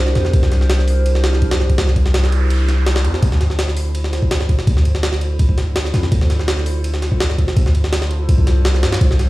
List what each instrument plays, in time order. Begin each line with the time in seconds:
Already playing: 808-style bass C2
0.07 snare
0.15 808-style bass E2, snare, ride
0.25 snare
0.33 808-style bass C2, kick, ride
0.43 snare
0.52 snare, ride
0.61 snare
0.70 snare, ride
0.79 snare
0.88 open hi-hat
1.06 ride
1.15 snare
1.24 snare, ride
1.33 snare
1.42 kick, ride
1.51 snare, ride
1.60 snare
1.69 kick, ride
1.78 808-style bass C2, snare, ride, noise sweep
1.88 snare
1.96 kick, ride
2.06 snare
2.14 snare, ride
2.24 snare
2.32 ride
2.50 ride
2.69 snare, ride
2.86 snare, ride
2.96 snare, ride
3.04 808-style bass E2, ride
3.14 snare
3.23 808-style bass D2, kick, ride
3.32 snare
3.41 snare, ride
3.50 snare
3.59 snare, ride
3.68 snare
3.77 open hi-hat
3.95 ride
4.04 snare
4.13 snare, ride
4.22 kick
4.31 snare, ride
4.41 snare
4.49 kick, ride
4.59 snare
4.67 808-style bass D2, kick, ride
4.77 snare
4.85 ride
4.95 snare
5.03 snare, ride
5.13 snare
5.21 ride
5.39 kick, ride
5.49 kick
5.58 snare, ride
5.76 snare, ride
5.85 snare
5.94 808-style bass F2, snare, ride
6.03 snare
6.12 808-style bass D2, kick, ride
6.21 snare
6.30 snare, ride
6.39 snare
6.48 snare, ride
6.58 snare
6.66 open hi-hat
6.84 ride
6.94 snare
7.02 snare, ride
7.12 kick
7.20 snare, ride
7.30 snare
7.38 kick, ride
7.48 snare
7.57 808-style bass D2, kick, ride
7.66 snare
7.75 ride
7.84 snare
7.93 snare, ride
8.02 snare
8.11 ride
8.29 808-style bass C2, kick, ride
8.38 kick
8.47 snare, ride
8.65 snare, ride
8.75 snare
8.83 808-style bass G2, snare, ride
8.93 snare, ride
9.01 808-style bass C2, kick, ride
9.11 snare
9.19 snare, ride